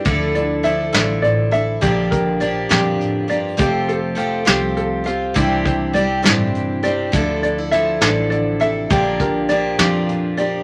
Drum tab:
HH |xxxxxx|xxxxxx|xxxxxx|xxxxxx|
SD |---o--|---o--|---o--|---o--|
BD |o-----|oo----|o-----|oo----|

HH |xxxxxx|xxxxxx|
SD |---o--|---o--|
BD |o-----|oo----|